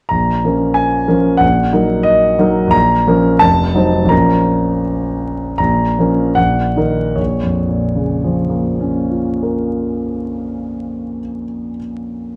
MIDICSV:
0, 0, Header, 1, 2, 480
1, 0, Start_track
1, 0, Key_signature, -5, "minor"
1, 0, Tempo, 647948
1, 80, Time_signature, 2, 2, 24, 8
1, 1518, Tempo, 693642
1, 3438, Tempo, 756620
1, 3918, Tempo, 803213
1, 4878, Tempo, 781250
1, 8058, End_track
2, 0, Start_track
2, 0, Title_t, "Grand piano"
2, 0, Program_c, 0, 0
2, 65, Note_on_c, 0, 82, 71
2, 80, Note_on_c, 0, 34, 42
2, 210, Control_c, 0, 64, 127
2, 320, Note_off_c, 0, 34, 0
2, 327, Note_on_c, 0, 53, 31
2, 332, Note_on_c, 0, 61, 34
2, 334, Note_on_c, 0, 70, 34
2, 549, Note_on_c, 0, 80, 71
2, 566, Note_off_c, 0, 82, 0
2, 785, Note_off_c, 0, 53, 0
2, 787, Note_off_c, 0, 61, 0
2, 788, Note_off_c, 0, 70, 0
2, 799, Note_on_c, 0, 70, 39
2, 801, Note_on_c, 0, 61, 38
2, 804, Note_on_c, 0, 53, 39
2, 1018, Note_off_c, 0, 70, 0
2, 1018, Note_on_c, 0, 78, 77
2, 1020, Note_off_c, 0, 61, 0
2, 1021, Note_off_c, 0, 53, 0
2, 1038, Note_on_c, 0, 34, 51
2, 1039, Note_off_c, 0, 80, 0
2, 1065, Control_c, 0, 64, 0
2, 1192, Control_c, 0, 64, 127
2, 1269, Note_off_c, 0, 34, 0
2, 1280, Note_on_c, 0, 63, 40
2, 1285, Note_on_c, 0, 54, 38
2, 1286, Note_on_c, 0, 70, 42
2, 1501, Note_off_c, 0, 78, 0
2, 1506, Note_on_c, 0, 75, 80
2, 1724, Note_off_c, 0, 63, 0
2, 1726, Note_off_c, 0, 54, 0
2, 1727, Note_off_c, 0, 70, 0
2, 1751, Note_on_c, 0, 54, 45
2, 1755, Note_on_c, 0, 63, 48
2, 1760, Note_on_c, 0, 70, 48
2, 1951, Note_on_c, 0, 34, 56
2, 1971, Note_off_c, 0, 54, 0
2, 1973, Note_off_c, 0, 63, 0
2, 1974, Note_on_c, 0, 82, 96
2, 1976, Note_off_c, 0, 70, 0
2, 1991, Note_off_c, 0, 75, 0
2, 2011, Control_c, 0, 64, 0
2, 2126, Control_c, 0, 64, 127
2, 2201, Note_off_c, 0, 34, 0
2, 2223, Note_on_c, 0, 53, 41
2, 2229, Note_on_c, 0, 61, 43
2, 2232, Note_on_c, 0, 70, 51
2, 2437, Note_off_c, 0, 53, 0
2, 2440, Note_off_c, 0, 61, 0
2, 2442, Note_off_c, 0, 70, 0
2, 2449, Note_on_c, 0, 81, 99
2, 2453, Note_off_c, 0, 82, 0
2, 2463, Note_on_c, 0, 29, 56
2, 2479, Control_c, 0, 64, 0
2, 2598, Control_c, 0, 64, 127
2, 2691, Note_on_c, 0, 54, 40
2, 2696, Note_off_c, 0, 29, 0
2, 2697, Note_on_c, 0, 63, 44
2, 2704, Note_on_c, 0, 72, 46
2, 2899, Note_on_c, 0, 34, 45
2, 2910, Note_on_c, 0, 53, 38
2, 2915, Note_off_c, 0, 54, 0
2, 2919, Note_off_c, 0, 63, 0
2, 2922, Note_off_c, 0, 72, 0
2, 2924, Note_on_c, 0, 61, 35
2, 2930, Note_on_c, 0, 82, 74
2, 2931, Note_on_c, 0, 70, 34
2, 2939, Note_off_c, 0, 81, 0
2, 2961, Control_c, 0, 64, 0
2, 3059, Control_c, 0, 64, 127
2, 3428, Note_off_c, 0, 82, 0
2, 3870, Note_off_c, 0, 34, 0
2, 3875, Note_off_c, 0, 53, 0
2, 3882, Note_off_c, 0, 61, 0
2, 3885, Note_off_c, 0, 70, 0
2, 3918, Note_on_c, 0, 82, 71
2, 3927, Note_on_c, 0, 34, 46
2, 3931, Control_c, 0, 64, 0
2, 4066, Control_c, 0, 64, 127
2, 4152, Note_off_c, 0, 34, 0
2, 4160, Note_on_c, 0, 53, 37
2, 4163, Note_on_c, 0, 61, 36
2, 4169, Note_on_c, 0, 70, 39
2, 4368, Note_off_c, 0, 53, 0
2, 4370, Note_off_c, 0, 61, 0
2, 4373, Note_off_c, 0, 70, 0
2, 4378, Note_on_c, 0, 78, 75
2, 4388, Note_off_c, 0, 82, 0
2, 4389, Note_on_c, 0, 34, 51
2, 4400, Control_c, 0, 64, 0
2, 4511, Control_c, 0, 64, 127
2, 4623, Note_on_c, 0, 51, 35
2, 4626, Note_off_c, 0, 34, 0
2, 4630, Note_on_c, 0, 63, 36
2, 4633, Note_on_c, 0, 70, 38
2, 4848, Note_off_c, 0, 51, 0
2, 4852, Note_off_c, 0, 63, 0
2, 4853, Note_off_c, 0, 70, 0
2, 4860, Note_on_c, 0, 73, 44
2, 4868, Note_on_c, 0, 34, 33
2, 4872, Note_off_c, 0, 78, 0
2, 4891, Control_c, 0, 64, 0
2, 4994, Control_c, 0, 64, 127
2, 5027, Note_on_c, 0, 41, 30
2, 5183, Note_on_c, 0, 46, 34
2, 5348, Note_on_c, 0, 49, 33
2, 5527, Note_on_c, 0, 53, 33
2, 5678, Note_on_c, 0, 58, 32
2, 5870, Note_on_c, 0, 61, 28
2, 6054, Note_on_c, 0, 65, 25
2, 6254, Note_on_c, 0, 70, 28
2, 7326, Note_off_c, 0, 73, 0
2, 7335, Note_off_c, 0, 34, 0
2, 7494, Note_off_c, 0, 41, 0
2, 7649, Note_off_c, 0, 46, 0
2, 7689, Note_off_c, 0, 58, 0
2, 7690, Note_off_c, 0, 65, 0
2, 7692, Note_off_c, 0, 70, 0
2, 7693, Note_off_c, 0, 61, 0
2, 7697, Note_off_c, 0, 49, 0
2, 7701, Note_off_c, 0, 53, 0
2, 8058, End_track
0, 0, End_of_file